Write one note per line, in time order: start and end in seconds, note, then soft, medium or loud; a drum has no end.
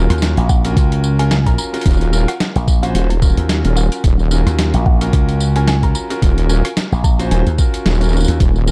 0.00 0.61 C#4 medium
0.00 0.61 F4 medium
0.00 0.61 F#4 medium
0.00 0.61 A#4 medium
0.10 0.35 D#2 loud
0.10 cross-stick medium
0.10 closed hi-hat medium
0.10 tambourine soft
0.18 tambourine soft
0.22 snare loud
0.22 closed hi-hat medium
0.22 tambourine soft
0.37 0.75 A#1 loud
0.37 closed hi-hat soft
0.37 tambourine soft
0.49 0.69 F#5 medium
0.49 kick loud
0.49 tambourine medium
0.65 1.16 C#4 loud
0.65 1.16 F4 medium
0.65 1.16 F#4 medium
0.65 1.16 A#4 loud
0.65 closed hi-hat medium
0.65 tambourine soft
0.76 1.56 C#2 loud
0.76 kick loud
0.76 closed hi-hat medium
0.76 tambourine soft
0.92 closed hi-hat soft
0.92 tambourine soft
1.04 tambourine medium
1.19 1.32 C#4 medium
1.19 1.32 F4 medium
1.19 1.32 F#4 medium
1.19 1.32 A#4 loud
1.19 1.27 G#5 medium
1.19 closed hi-hat medium
1.19 tambourine soft
1.31 1.41 G#5 medium
1.31 snare loud
1.31 closed hi-hat medium
1.31 tambourine soft
1.46 1.70 C#4 medium
1.46 1.70 F4 medium
1.46 1.70 F#4 medium
1.46 1.70 A#4 medium
1.46 1.54 A#5 medium
1.46 kick medium
1.46 closed hi-hat soft
1.46 tambourine soft
1.58 1.68 A#5 medium
1.58 tambourine medium
1.73 2.10 C#4 medium
1.73 2.10 F4 medium
1.73 2.10 F#4 medium
1.73 2.10 A#4 loud
1.73 closed hi-hat medium
1.73 tambourine soft
1.76 tambourine soft
1.80 closed hi-hat soft
1.80 tambourine soft
1.82 kick loud
1.82 closed hi-hat medium
1.82 tambourine soft
1.86 2.26 D#1 loud
1.86 tambourine soft
1.90 closed hi-hat soft
1.90 tambourine soft
1.93 tambourine soft
1.97 closed hi-hat soft
1.97 tambourine soft
2.01 tambourine soft
2.13 2.29 C#4 medium
2.13 2.29 F4 medium
2.13 2.29 F#4 medium
2.13 2.29 A#4 loud
2.13 tambourine medium
2.28 2.46 F#5 medium
2.28 cross-stick medium
2.28 closed hi-hat medium
2.28 tambourine soft
2.40 snare loud
2.40 closed hi-hat medium
2.40 tambourine soft
2.56 2.93 A#1 loud
2.56 closed hi-hat soft
2.56 tambourine soft
2.68 kick loud
2.68 tambourine medium
2.83 3.06 C#4 loud
2.83 3.06 F4 medium
2.83 3.06 F#4 medium
2.83 3.06 C5 loud
2.83 3.01 F#5 medium
2.83 closed hi-hat medium
2.83 tambourine soft
2.94 3.35 D#1 loud
2.94 closed hi-hat medium
2.94 tambourine soft
3.10 3.28 A#5 loud
3.10 closed hi-hat soft
3.10 tambourine soft
3.22 3.61 C#4 medium
3.22 3.61 F4 medium
3.22 3.61 F#4 medium
3.22 3.61 A#4 medium
3.22 kick loud
3.22 tambourine medium
3.30 tambourine soft
3.37 3.62 D#2 medium
3.37 closed hi-hat medium
3.49 snare loud
3.49 closed hi-hat medium
3.49 tambourine soft
3.64 3.90 D#1 medium
3.64 3.74 C#4 medium
3.64 3.74 F4 medium
3.64 3.74 F#4 medium
3.64 3.74 A#4 medium
3.64 closed hi-hat soft
3.64 tambourine soft
3.76 4.00 C#4 medium
3.76 4.00 F4 medium
3.76 4.00 F#4 medium
3.76 4.00 A#4 medium
3.76 4.31 F#5 medium
3.76 tambourine medium
3.92 closed hi-hat medium
3.92 tambourine soft
4.04 4.44 D#1 loud
4.04 kick loud
4.04 closed hi-hat medium
4.04 tambourine soft
4.19 tambourine soft
4.31 4.97 C#4 medium
4.31 4.97 F4 medium
4.31 4.97 F#4 medium
4.31 4.97 A#4 medium
4.31 tambourine medium
4.46 4.71 D#2 loud
4.46 cross-stick medium
4.46 closed hi-hat medium
4.46 tambourine soft
4.59 snare loud
4.59 closed hi-hat medium
4.59 tambourine soft
4.74 5.11 A#1 medium
4.74 closed hi-hat soft
4.74 tambourine soft
4.86 5.06 F#5 medium
4.86 kick loud
5.01 5.52 C#4 medium
5.01 5.52 F4 medium
5.01 5.52 F#4 medium
5.01 5.52 A#4 loud
5.01 closed hi-hat soft
5.01 tambourine soft
5.13 5.93 C#2 medium
5.13 kick loud
5.13 closed hi-hat medium
5.13 tambourine soft
5.29 closed hi-hat soft
5.29 tambourine soft
5.40 tambourine medium
5.56 5.69 C#4 loud
5.56 5.69 F4 medium
5.56 5.69 F#4 medium
5.56 5.69 A#4 loud
5.56 5.64 G#5 medium
5.56 closed hi-hat soft
5.56 tambourine soft
5.68 5.78 G#5 medium
5.68 snare loud
5.68 closed hi-hat medium
5.68 tambourine soft
5.83 6.07 C#4 medium
5.83 6.07 F4 medium
5.83 6.07 F#4 medium
5.83 6.07 A#4 medium
5.83 5.91 A#5 medium
5.83 kick medium
5.83 closed hi-hat soft
5.83 tambourine soft
5.95 6.05 A#5 medium
5.95 tambourine medium
6.10 6.47 C#4 medium
6.10 6.47 F4 medium
6.10 6.47 F#4 medium
6.10 6.47 A#4 loud
6.10 closed hi-hat soft
6.10 tambourine soft
6.22 6.62 D#1 loud
6.22 kick loud
6.22 closed hi-hat medium
6.22 tambourine soft
6.38 closed hi-hat soft
6.38 tambourine soft
6.49 6.66 C#4 medium
6.49 6.66 F4 medium
6.49 6.66 F#4 medium
6.49 6.66 A#4 loud
6.49 6.59 G#5 medium
6.49 tambourine medium
6.65 6.72 G#5 medium
6.65 cross-stick medium
6.65 closed hi-hat medium
6.65 tambourine soft
6.77 snare loud
6.77 closed hi-hat medium
6.77 tambourine soft
6.92 7.29 A#1 medium
6.92 tambourine soft
7.04 7.24 A#5 medium
7.04 kick loud
7.04 tambourine medium
7.19 7.42 C#4 medium
7.19 7.42 F4 medium
7.19 7.42 F#4 medium
7.19 7.42 C5 loud
7.19 closed hi-hat soft
7.19 tambourine soft
7.31 7.44 D#1 loud
7.31 7.86 G#5 medium
7.31 closed hi-hat medium
7.31 tambourine soft
7.47 7.57 D#2 loud
7.47 closed hi-hat soft
7.47 tambourine soft
7.58 7.97 C#4 medium
7.58 7.97 F4 medium
7.58 7.97 F#4 medium
7.58 7.97 A#4 medium
7.58 kick loud
7.58 tambourine medium
7.74 closed hi-hat medium
7.74 tambourine soft
7.86 8.26 D#1 loud
7.86 snare loud
7.86 closed hi-hat medium
7.86 tambourine soft
7.91 tambourine soft
7.95 tambourine soft
8.01 8.10 C#4 medium
8.01 8.10 F4 medium
8.01 8.10 F#4 medium
8.01 8.10 A#4 medium
8.01 closed hi-hat soft
8.01 tambourine soft
8.04 tambourine soft
8.09 8.37 C#4 medium
8.09 8.37 F4 medium
8.09 8.37 F#4 medium
8.09 tambourine soft
8.13 8.37 A#4 medium
8.13 tambourine soft
8.17 tambourine soft
8.20 tambourine medium
8.24 8.38 D#2 loud
8.24 closed hi-hat soft
8.24 tambourine medium
8.28 tambourine soft
8.40 8.71 D#1 loud
8.40 kick loud
8.40 closed hi-hat medium
8.40 tambourine soft
8.56 tambourine soft
8.67 8.71 C#4 medium
8.67 8.71 F4 medium
8.67 8.71 F#4 medium
8.67 8.71 A#4 medium
8.67 tambourine medium